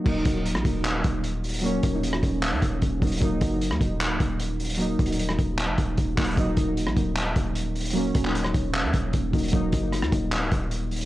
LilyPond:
<<
  \new Staff \with { instrumentName = "Synth keys" } { \time 4/4 \key ees \minor \tempo 4 = 152 <ges bes ees'>8 r16 <ges bes ees'>8 r16 <ges bes ees'>4. r4 | <ges bes des'>8 r16 <ges bes ees'>4. r4 r16 <ges bes ees'>8 | <ges bes ees'>8 r16 <ges bes ees'>8 r16 <ges bes ees'>4. r4 | <ges bes ees'>8 r16 <ges bes ees'>4. r4 r16 <ges bes ees'>8 |
<ges bes ees'>8 r16 <ges bes ees'>8 r16 <ges bes ees'>4. r4 | <ges bes des'>8 r16 <ges bes ees'>4. r4 r16 <ges bes ees'>8 | <ges bes ees'>8 r16 <ges bes ees'>8 r16 <ges bes ees'>4. r4 | }
  \new Staff \with { instrumentName = "808-style bass" } { \clef bass \time 4/4 \key ees \minor ees,,8 ees,,8. bes,,16 ees,,4 ees,,4.~ | ees,,8 ees,,4 ees,,8. ees,16 ees,,8 ees,,8 ees,,8 | ees,,8 ges,,8. ees,16 ees,,8. des,,16 ees,,4.~ | ees,,8 ees,,4 ees,,8. ges,,16 ees,,8 ees,,8 ees,,8 |
ees,,8 ees,,8. bes,,16 ees,,4 ees,,4.~ | ees,,8 ees,,4 ees,,8. ees,16 ees,,8 ees,,8 ees,,8 | ees,,8 ges,,8. ees,16 ees,,8. des,,16 ees,,4. | }
  \new DrumStaff \with { instrumentName = "Drums" } \drummode { \time 4/4 <cymc bd>8 <hh bd>8 hh16 ss16 <hh bd>8 <hc hh>8 <hh bd>8 hh8 hh32 hh32 hh32 hh32 | hh8 <hh bd>8 hh16 ss16 <hh bd>8 <hc hh>8 <hh bd>8 <hh bd>8 <hh bd>32 hh32 hh32 hh32 | <hh bd>8 <hh bd>8 hh16 ss16 <hh bd>8 <hc hh>8 <hh bd>8 hh8 hh32 hh32 hh32 hh32 | \tuplet 3/2 { hh16 r16 r16 <hh bd>16 hh16 hh16 } hh16 ss16 <hh bd>8 <hc hh>8 <hh bd>8 \tuplet 3/2 { <hh bd>16 r16 r16 <hc hh hho bd>16 hh16 hh16 } |
<hh bd>8 <hh bd>8 hh16 ss16 <hh bd>8 <hc hh>8 <hh bd>8 hh8 hh32 hh32 hh32 hh32 | hh8 <hh bd>16 hc16 hh16 ss16 <hh bd>8 <hc hh>8 <hh bd>8 <hh bd>8 <hh bd>32 hh32 hh32 hh32 | <hh bd>8 <hh bd>8 <hh ss>16 ss16 <hh bd>8 <hc hh>8 <hh bd>8 hh8 hh32 hh32 hh16 | }
>>